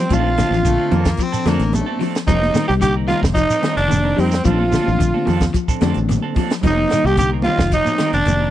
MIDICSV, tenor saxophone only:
0, 0, Header, 1, 2, 480
1, 0, Start_track
1, 0, Tempo, 542986
1, 103, Time_signature, 4, 2, 24, 8
1, 7518, End_track
2, 0, Start_track
2, 0, Title_t, "Tenor saxophone"
2, 0, Program_c, 0, 66
2, 0, Note_on_c, 0, 60, 86
2, 121, Note_on_c, 0, 65, 93
2, 135, Note_off_c, 0, 60, 0
2, 1070, Note_off_c, 0, 65, 0
2, 2009, Note_on_c, 0, 63, 99
2, 2351, Note_off_c, 0, 63, 0
2, 2368, Note_on_c, 0, 67, 99
2, 2424, Note_off_c, 0, 67, 0
2, 2492, Note_on_c, 0, 67, 101
2, 2602, Note_off_c, 0, 67, 0
2, 2719, Note_on_c, 0, 65, 99
2, 2832, Note_off_c, 0, 65, 0
2, 2957, Note_on_c, 0, 63, 101
2, 3304, Note_off_c, 0, 63, 0
2, 3332, Note_on_c, 0, 62, 94
2, 3714, Note_on_c, 0, 60, 83
2, 3727, Note_off_c, 0, 62, 0
2, 3929, Note_off_c, 0, 60, 0
2, 3934, Note_on_c, 0, 65, 92
2, 4861, Note_off_c, 0, 65, 0
2, 5896, Note_on_c, 0, 63, 96
2, 6239, Note_on_c, 0, 67, 103
2, 6253, Note_off_c, 0, 63, 0
2, 6349, Note_off_c, 0, 67, 0
2, 6353, Note_on_c, 0, 67, 97
2, 6458, Note_off_c, 0, 67, 0
2, 6574, Note_on_c, 0, 65, 102
2, 6801, Note_off_c, 0, 65, 0
2, 6843, Note_on_c, 0, 63, 99
2, 7171, Note_off_c, 0, 63, 0
2, 7195, Note_on_c, 0, 62, 98
2, 7518, Note_off_c, 0, 62, 0
2, 7518, End_track
0, 0, End_of_file